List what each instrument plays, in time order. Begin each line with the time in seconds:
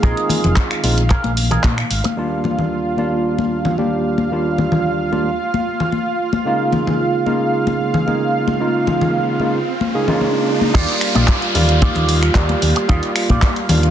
Already playing: analog synth pad D#3 F5
0.02 fingered electric bass A#1, tine electric piano G#3 C4 D#4 F4, clean electric guitar G#4 A#4 D#5, kick, closed hi-hat
0.17 closed hi-hat
0.29 open hi-hat, high conga, low conga
0.44 fingered electric bass F1, closed hi-hat, low conga
0.56 kick, clap, closed hi-hat
0.71 finger snap, closed hi-hat
0.83 fingered electric bass A#1, tine electric piano G#3 C4 D#4 F4, open hi-hat, high conga
0.98 closed hi-hat
1.10 clean electric guitar G#4 A#4 F5, kick, clap, closed hi-hat
1.24 fingered electric bass A#1, closed hi-hat, high conga
1.37 open hi-hat
1.51 clean electric guitar G#4 A#4 D#5, closed hi-hat, low conga
1.64 fingered electric bass A#2, kick, clap, closed hi-hat, high conga
1.78 finger snap, muted clean electric guitar stroke, closed hi-hat
1.91 fingered electric bass G#1, open hi-hat
2.04 muted clean electric guitar stroke, closed hi-hat, high conga
2.16 tine electric piano D#2 G3 A#3 D4 F4, analog synth pad F4 F5
2.44 high conga, low conga
2.59 low conga
2.97 tine electric piano D#2 G3 A#3 D4 F4, high conga
3.38 high conga
3.65 low conga
3.78 tine electric piano D#2 G3 A#3 D4 G4, high conga
4.18 high conga
4.31 tine electric piano D#2 G3 A#3 D4 F4
4.58 high conga, low conga
4.72 low conga
5.12 tine electric piano D#2 G3 A#3 D4 F4, high conga
5.54 high conga
5.80 low conga
5.92 high conga
6.33 high conga
6.45 tine electric piano C#3 G#3 A#3 D#4 F4, riser
6.72 high conga, low conga
6.87 low conga
7.26 tine electric piano C#3 G#3 A#3 D#4 F4, high conga
7.67 high conga
7.94 low conga
8.07 tine electric piano C#3 G#3 A#3 D#4 G#4, high conga
8.48 high conga
8.59 tine electric piano C#3 G#3 A#3 D#4 F4
8.87 high conga, low conga
9.01 low conga
9.40 tine electric piano C#3 G#3 A#3 D#4 F4, high conga
9.81 high conga
9.94 tine electric piano C#3 G#3 A#3 D#4 G#4
10.08 tine electric piano C#3 G#3 A#3 D#4 F4, low conga
10.21 high conga
10.61 high conga
10.74 fingered electric bass D#2, tine electric piano G3 A#3 F4 D5, clean electric guitar D#4 F4 G4 D5, analog synth pad F4 F5, kick, closed hi-hat, crash, downlifter
10.88 closed hi-hat
11.01 finger snap, open hi-hat
11.15 fingered electric bass A#1, clean electric guitar D#4 F4 G4 D5, closed hi-hat, high conga
11.28 kick, clap, closed hi-hat
11.42 closed hi-hat
11.54 fingered electric bass D#2, tine electric piano G3 A#3 F4 D5, muted clean electric guitar stroke, open hi-hat, low conga
11.69 closed hi-hat
11.81 clean electric guitar D#4 F4 G4 D5, kick, closed hi-hat, high conga
11.95 fingered electric bass D#2, closed hi-hat, low conga
12.09 open hi-hat
12.23 finger snap, closed hi-hat
12.35 fingered electric bass D#2, tine electric piano G3 A#3 G4 D5, kick, clap, closed hi-hat
12.49 closed hi-hat, high conga
12.62 fingered electric bass D#2, muted clean electric guitar stroke, open hi-hat
12.76 muted clean electric guitar stroke, closed hi-hat
12.88 fingered electric bass D#2, tine electric piano G3 A#3 F4, clean electric guitar D#4 F4 G4 D#5, kick, closed hi-hat
13.03 closed hi-hat
13.16 finger snap, open hi-hat
13.30 fingered electric bass A#1, clean electric guitar D#4 F4 G4 D5, kick, closed hi-hat, high conga
13.42 kick, clap, closed hi-hat
13.56 closed hi-hat
13.69 fingered electric bass D#2, tine electric piano G3 A#3 D4 F4, muted clean electric guitar stroke, open hi-hat, low conga
13.83 closed hi-hat